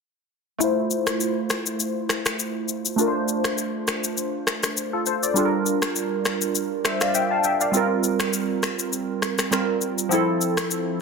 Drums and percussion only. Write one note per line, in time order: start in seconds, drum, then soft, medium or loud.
0.61 shaker medium
0.91 shaker soft
1.07 finger snap medium
1.07 cross-stick loud
1.07 shaker medium
1.20 shaker medium
1.50 finger snap medium
1.50 cross-stick loud
1.50 shaker medium
1.66 shaker medium
1.80 shaker medium
2.09 finger snap medium
2.09 cross-stick medium
2.09 shaker soft
2.26 finger snap medium
2.26 cross-stick medium
2.26 shaker medium
2.39 shaker medium
2.68 shaker soft
2.86 shaker medium
2.99 shaker medium
3.28 shaker soft
3.44 finger snap medium
3.44 cross-stick loud
3.44 shaker medium
3.58 shaker medium
3.88 finger snap medium
3.88 cross-stick loud
3.88 shaker medium
4.04 shaker medium
4.18 shaker medium
4.47 finger snap medium
4.47 cross-stick medium
4.47 shaker soft
4.63 finger snap medium
4.63 cross-stick medium
4.63 shaker medium
4.77 shaker medium
5.06 shaker soft
5.23 shaker medium
5.36 shaker medium
5.66 shaker soft
5.82 finger snap medium
5.82 cross-stick loud
5.82 shaker medium
5.96 shaker medium
6.25 finger snap medium
6.25 cross-stick loud
6.25 shaker medium
6.42 shaker medium
6.55 shaker medium
6.85 finger snap medium
6.85 cross-stick medium
6.85 shaker soft
7.01 finger snap medium
7.01 cross-stick medium
7.01 shaker medium
7.15 shaker medium
7.44 shaker soft
7.61 shaker medium
7.74 shaker medium
8.04 shaker soft
8.20 finger snap medium
8.20 cross-stick loud
8.20 shaker medium
8.33 shaker medium
8.63 finger snap medium
8.63 cross-stick loud
8.63 shaker medium
8.79 shaker medium
8.93 shaker medium
9.22 finger snap medium
9.22 cross-stick medium
9.22 shaker soft
9.39 finger snap medium
9.39 cross-stick medium
9.39 shaker medium
9.52 finger snap medium
9.52 cross-stick loud
9.52 shaker medium
9.81 shaker soft
9.99 shaker medium
10.11 shaker medium
10.41 shaker soft
10.57 finger snap medium
10.57 cross-stick loud
10.57 shaker medium
10.71 shaker medium